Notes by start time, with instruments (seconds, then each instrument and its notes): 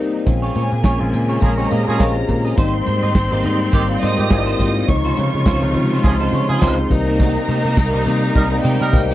Already playing: string section C3 G3 A#3 D#4, tine electric piano G3 A#3 C4 D#4
0.25 picked electric bass A#1, string section C#3 G#3 A#3, tine electric piano G#3 C4 C#4 F4, violin section G#4 G#5, muted clean electric guitar stroke, kick, closed hi-hat, tambourine, low conga
0.42 clean electric guitar F4 G#4 C#5, tambourine, muted conga
0.55 picked electric bass A#2, clean electric guitar F4 G#4 C#5, closed hi-hat, tambourine, high conga
0.72 picked electric bass A#2, muted clean electric guitar stroke, closed hi-hat
0.83 picked electric bass A#1, clean electric guitar F4 G#4 C#5, kick, snare, closed hi-hat, tambourine
0.99 picked electric bass A#1, tine electric piano G#3 C4 C#4 F4, muted clean electric guitar stroke
1.13 picked electric bass A#2, muted clean electric guitar stroke, closed hi-hat, tambourine, low conga
1.29 clean electric guitar F4 G#4 C#5, closed hi-hat, tambourine
1.41 picked electric bass A#1, horn section F3 C#4 G#4, violin section A#4 A#5, muted clean electric guitar stroke, kick, closed hi-hat, tambourine, muted conga
1.58 tine electric piano G#3 C4 C#4 G4, clean electric guitar F4 G#4 C#5
1.71 picked electric bass A#2, clean electric guitar F4 G#4 D#5, closed hi-hat, tambourine, high conga
1.87 picked electric bass A#2, horn section F3 C#4 G#4, muted clean electric guitar stroke, closed hi-hat
1.99 picked electric bass A#1, tine electric piano G#3 C4 C#4 F4, clean electric guitar F4 G#4 C#5, kick, snare, closed hi-hat, tambourine, muted conga, high conga
2.16 muted clean electric guitar stroke
2.28 picked electric bass A#2, muted clean electric guitar stroke, kick, open hi-hat, tambourine, low conga
2.44 clean electric guitar F4 G#4 D#5, closed hi-hat, tambourine
2.57 picked electric bass G#1, string section D#3 G3 C4, tine electric piano G3 A#3 C4 D#4, clean electric guitar D#4 G4 C5, violin section C5 C6, kick, closed hi-hat, tambourine, muted conga, low conga
2.74 muted clean electric guitar stroke, closed hi-hat, muted conga
2.86 picked electric bass G#2, clean electric guitar D#4 G4 C5, closed hi-hat, tambourine, high conga
3.03 picked electric bass G#2, clean electric guitar D#4 G4 D#5, closed hi-hat
3.15 picked electric bass G#1, muted clean electric guitar stroke, kick, snare, closed hi-hat, tambourine
3.31 picked electric bass G#1, tine electric piano G3 A#3 C4 D#4, clean electric guitar D#4 G4 C5, closed hi-hat, muted conga
3.43 picked electric bass G#2, clean electric guitar D#4 G4 D#5, closed hi-hat, tambourine, low conga
3.60 muted clean electric guitar stroke, closed hi-hat
3.72 picked electric bass G#1, horn section D#3 C4 G4, kick, closed hi-hat, tambourine, muted conga
3.89 tine electric piano G3 A#3 C4 F4, muted clean electric guitar stroke, closed hi-hat
4.01 picked electric bass G#2, clean electric guitar D#4 G4 C5, violin section D#5 D#6, closed hi-hat, tambourine, high conga
4.18 picked electric bass G#2, horn section D#3 C4 G4, muted clean electric guitar stroke, closed hi-hat, tambourine
4.30 picked electric bass G#1, tine electric piano G3 A#3 C4 E4, muted clean electric guitar stroke, kick, snare, closed hi-hat, tambourine, muted conga, high conga
4.38 tine electric piano F4
4.46 clean electric guitar D#4 G4 C5
4.59 picked electric bass G#2, clean electric guitar D#4 G4 C5, kick, open hi-hat, tambourine, low conga
4.75 muted clean electric guitar stroke, closed hi-hat
4.88 picked electric bass C#2, string section C3 G#3 F4, tine electric piano C3 F3 G#3 D#4, violin section C#5 C#6, muted clean electric guitar stroke, kick, closed hi-hat, tambourine, muted conga, low conga
5.04 clean electric guitar C#4 F4 C5, closed hi-hat, tambourine
5.17 picked electric bass C#3, clean electric guitar C#4 F4 C5, closed hi-hat, tambourine, high conga
5.33 picked electric bass C#3, muted clean electric guitar stroke, closed hi-hat
5.46 picked electric bass C#2, clean electric guitar C#4 F4 C5, kick, snare, closed hi-hat, tambourine
5.62 picked electric bass C#2, tine electric piano C3 F3 G#3 D#4, muted clean electric guitar stroke
5.74 picked electric bass C#3, muted clean electric guitar stroke, closed hi-hat, tambourine, low conga
5.90 clean electric guitar C#4 F4 C5, closed hi-hat
6.03 picked electric bass C#2, horn section F3 C#4 G#4, violin section C5 C6, muted clean electric guitar stroke, kick, closed hi-hat, tambourine
6.20 tine electric piano F3 G#3 C4 D#4, clean electric guitar C#4 F4 C5, snare, closed hi-hat, muted conga
6.33 picked electric bass C#3, clean electric guitar C#4 F4 C#5, closed hi-hat, tambourine, high conga
6.49 picked electric bass C#3, horn section F3 C#4 G#4, closed hi-hat
6.60 picked electric bass C#2, tine electric piano F3 G#3 C4 D#4, clean electric guitar C#4 F4 C5, kick, snare, closed hi-hat, tambourine, high conga
6.78 muted clean electric guitar stroke, muted conga
6.90 picked electric bass C2, string section C3 G3 A#3 D#4, tine electric piano G3 A#3 C4 D#4, violin section A#4 A#5, muted clean electric guitar stroke, kick, open hi-hat, tambourine, low conga
7.07 clean electric guitar A#3 D#4 A#4, closed hi-hat
7.20 clean electric guitar A#3 D#4 G4, kick, closed hi-hat, tambourine, muted conga, low conga
7.35 muted clean electric guitar stroke, tambourine, muted conga
7.48 picked electric bass C3, clean electric guitar A#3 D#4 G4, closed hi-hat, tambourine, high conga
7.65 picked electric bass C3, clean electric guitar A#3 D#4 A#4, closed hi-hat
7.77 picked electric bass C2, kick, snare, closed hi-hat, tambourine, muted conga
7.93 picked electric bass C2, tine electric piano G3 A#3 C4 D#4, clean electric guitar A#3 D#4 G4, muted conga
8.06 picked electric bass C3, clean electric guitar A#3 D#4 A#4, closed hi-hat, tambourine, low conga
8.22 closed hi-hat, tambourine
8.36 picked electric bass C2, horn section G3 D#4 A#4, kick, snare, tambourine, muted conga
8.51 tine electric piano G3 A#3 C4 D#4, muted clean electric guitar stroke, muted conga
8.64 picked electric bass C3, clean electric guitar A#3 D#4 G4, violin section G4 G5, high tom, tambourine, high conga
8.81 picked electric bass C3, horn section G3 D#4 A#4, muted clean electric guitar stroke, high tom
8.93 picked electric bass C2, tine electric piano G3 A#3 C4 D#4, kick, mid tom, tambourine, muted conga, high conga
9.10 clean electric guitar D#4 G4, muted conga